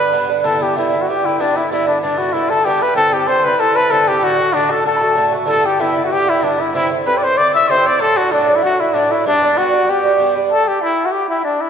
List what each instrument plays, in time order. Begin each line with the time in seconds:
Already playing: bouzouki D4, trumpet B4, flute B5
0.00 bouzouki D3 B3
0.12 bouzouki G2 D3 B3 D4
0.29 bouzouki D3 B3 D4
0.41 bouzouki G2 D3 B3, trumpet A4, flute B5
0.45 bouzouki E4, flute A5
0.61 bouzouki D3 B3 E4, trumpet G4, flute G5
0.77 bouzouki G2 D3 B3 E4, trumpet E4, flute E5
0.92 bouzouki D3 B3 E4
1.01 trumpet F#4, flute F#5
1.08 bouzouki G2 D3 B3 E4, trumpet G4, flute G5
1.25 bouzouki D3 B3 E4, trumpet E4
1.39 bouzouki G2 D3 B3 E4, trumpet D4, flute D5
1.56 bouzouki D3 B3 E4, trumpet E4, flute E5
1.71 bouzouki G2 D3 B3 E4, trumpet E4, flute E5
1.87 bouzouki D3 B3 E4, trumpet D4, flute D5
2.01 bouzouki G2 D3 B3 E4, trumpet D4, flute D5
2.18 bouzouki D3 B3 E4, trumpet F#4
2.32 bouzouki G2 D3 B3 E4, trumpet E4, flute E5
2.50 bouzouki D3 B3 E4, trumpet A4, flute A5
2.64 bouzouki G2 D3 B3 E4, trumpet G4, flute G5
2.81 bouzouki D3 B3 E4, trumpet B4
2.95 bouzouki G2 D3 C4 E4, trumpet A4, flute A5
3.12 bouzouki D3 C4 E4, trumpet G4, flute G5
3.27 bouzouki G2 D3 C4 E4, trumpet C5, flute C6
3.44 bouzouki D3 C4 E4, trumpet B4, flute B5
3.59 bouzouki G2 D3 C4 E4, trumpet A4, flute A5
3.76 bouzouki D3 C4 E4, trumpet B4
3.90 bouzouki G2 D3 C4 E4, trumpet A4, flute A5
4.08 bouzouki D3 C4 E4, trumpet G4, flute G5
4.21 bouzouki A2 D3 A3 F#4, trumpet F#4, flute F#5
4.38 bouzouki D3 A3 F#4
4.53 bouzouki A2 D3 A3 F#4, trumpet D4, flute D5
4.69 bouzouki D3 A3 F#4, trumpet A4, flute A5
4.84 bouzouki A2 D3 A3 F#4, trumpet A4, flute A5
4.97 flute B5
5.01 bouzouki D3 A3 F#4, flute A5
5.12 bouzouki A2, flute G5 A5
5.16 bouzouki D3 A3 F#4
5.32 bouzouki D3 A3 F#4
5.46 bouzouki G2 D3 B3 E4, trumpet A4, flute A5
5.64 bouzouki D3 B3 E4, trumpet G4, flute G5
5.79 bouzouki G2 D3 B3 E4, trumpet E4, flute E5
5.97 bouzouki D3 B3 E4
6.04 trumpet F#4, flute F#5
6.10 bouzouki G2 D3 B3 E4, trumpet G4, flute G5
6.27 bouzouki D3 B3 E4, trumpet E4, flute E5
6.42 bouzouki G2 D3 B3 E4, trumpet D4, flute D5
6.58 bouzouki D3 B3 E4, trumpet E4, flute E5
6.73 bouzouki G2 D3 C4 E4, trumpet E4, flute E5
6.89 bouzouki D3 C4 E4
7.05 bouzouki G2 D3 C4 E4, trumpet B4, flute B5
7.18 trumpet D5
7.22 bouzouki D3 C4 E4, trumpet C5
7.37 bouzouki G2 D3 C4 E4, trumpet D5, flute D6
7.53 bouzouki C4 E4, trumpet E5, flute E6
7.58 bouzouki D3
7.67 bouzouki G2 D3 C4 E4, trumpet C5, flute C6
7.84 bouzouki D3 C4 E4, trumpet D5, flute D6
7.99 bouzouki A2 F#3 A3 D4, trumpet A4, flute A5
8.16 bouzouki F#3 A3 D4, trumpet F#4
8.31 bouzouki A2 F#3 A3 D4, trumpet D4, flute D5
8.48 bouzouki F#3 A3 D4
8.56 trumpet E4, flute E5
8.62 bouzouki A2 F#3 A3 D4, trumpet F#4, flute F#5
8.79 bouzouki F#3 A3 D4, trumpet E4, flute E5
8.94 bouzouki A2 F#3 A3 D4, trumpet D4, flute D5
9.10 bouzouki F#3 A3 D4, trumpet E4, flute E5
9.26 bouzouki G2 G3 B3 D4, trumpet D4, flute D5
9.42 bouzouki G3 B3 D4
9.56 bouzouki G2 G3 B3 D4, trumpet F#4, flute F#5
9.74 bouzouki G3 B3 D4
9.88 bouzouki G2 G3 B3 D4, trumpet G4, flute G5
10.04 bouzouki G3 B3 D4
10.19 bouzouki G2 G3 B3 D4
10.35 bouzouki G3 B3 D4
10.50 trumpet A4, flute A5
10.67 trumpet G4, flute G5
10.81 trumpet E4, flute E5
11.05 trumpet F#4, flute F#5
11.12 trumpet G4, flute G5
11.29 trumpet E4, flute E5
11.44 trumpet D4, flute D5
11.61 trumpet E4, flute E5